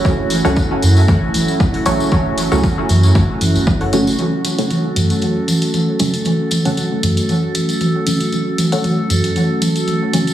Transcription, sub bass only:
X:1
M:4/4
L:1/16
Q:"Swing 16ths" 1/4=116
K:F#m
V:1 name="Sub bass" clef=bass
F,,,3 C,, z2 F,,2 A,,,2 F,,, z3 A,,, z | F,,,3 C,, z2 F,,2 z3 F,,,4- F,,, | z16 | z16 |
z16 |]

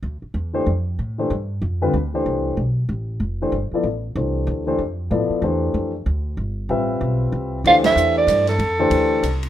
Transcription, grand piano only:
X:1
M:3/4
L:1/8
Q:"Swing" 1/4=189
K:Ddor
V:1 name="Grand piano"
z3 [E,A,DGc] z2 | z [E,A,DGc] z3 [D,G,CFB] | z [E,A,DGc]3 z2 | z3 [E,A,DGc] z [F,B,EAd] |
z2 [E,A,DGc]3 [E,A,DGc] | z2 [F,B,EAd]2 [E,A,DGc]2- | [E,A,DGc] z4 z | [G,CFBe]4- [G,CFBe] z |
[E,A,DGc]4- [E,A,DGc] z | z [E,A,DGc]3 z2 |]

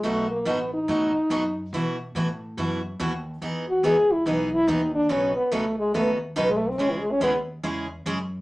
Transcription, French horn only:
X:1
M:4/4
L:1/16
Q:"Swing" 1/4=142
K:Bmix
V:1 name="French horn"
A,2 ^A,2 B,2 D8- D2 | z16 | z2 F2 G2 E2 D2 E2 D2 =D2 | C2 B,2 A,2 G,2 A,2 z3 G, A, =C |
C E, G, C B,2 z8 z2 |]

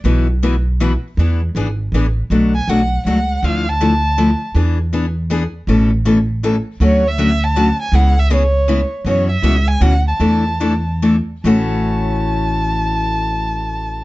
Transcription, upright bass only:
X:1
M:3/4
L:1/8
Q:"Swing" 1/4=160
K:A
V:1 name="Upright bass" clef=bass
B,,,6 | E,,2 G,,,2 A,,,2 | B,,,2 B,,,2 C,,2 | D,,6 |
E,,6 | A,,,6 | D,,6 | C,,6 |
F,,2 C,,2 D,,2 | E,,6 | A,,,6- | A,,,6 |]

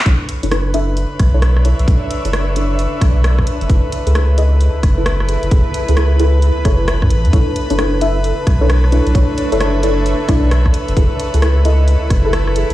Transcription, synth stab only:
X:1
M:4/4
L:1/16
Q:"Swing 16ths" 1/4=132
K:Bm
V:1 name="Synth stab"
[DEAc]3 [DEAc] [DEAB]2 [DEAe]4- [DEAe] [DEAc] z2 [DEAc]2 | [DEAc]3 [DEAc] [DEAc]2 [DEAc] z3 [DEAd]4 z2 | [E^GAB]3 [EGAB] [EGAB]2 [EGA^d]4- [EGAd] [EGAB] z2 [EGAB]2 | [E^GAB]3 [EGAB] [EGAB]2 [EGAB] z3 [EGAc]6 |
[DEAc]3 [DEAc] [DEAB]2 [DEAe]4- [DEAe] [DEAc] z2 [DEAc]2 | [DEAc]3 [DEAc] [DEAc]2 [DEAc] z3 [DEAd]4 z2 | [E^GAB]3 [EGAB] [EGAB]2 [EGA^d]4- [EGAd] [EGAB] z2 [EGAB]2 |]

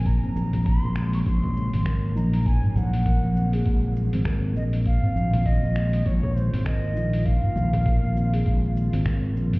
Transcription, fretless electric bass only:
X:1
M:4/4
L:1/16
Q:"Swing 16ths" 1/4=100
K:Gblyd
V:1 name="Fretless electric bass" clef=bass
B,,, z B,,,3 B,,,3 B,,,3 A,,,3 B,,,2- | B,,, z B,,,3 B,,,3 B,,,3 A,,,3 B,,,2- | B,,, z B,,,3 B,,,3 B,,,3 A,,,3 B,,,2- | B,,, z B,,,3 B,,,3 B,,,3 A,,,3 B,,,2 |]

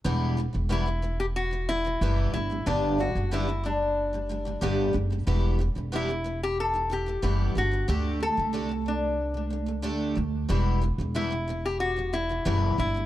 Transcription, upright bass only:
X:1
M:4/4
L:1/16
Q:1/4=92
K:Em
V:1 name="Upright bass" clef=bass
E,,,3 E,,,8- E,,, F,,,2 G,,,2 | G,,,3 F,,,8- F,,, G,,,2 F,,,2 | E,,,3 E,,,8- E,,, F,,,2 G,,,2 | D,,3 C,,8- C,, D,,2 D,,2 |
E,,,3 E,,,8- E,,, F,,,2 G,,,2 |]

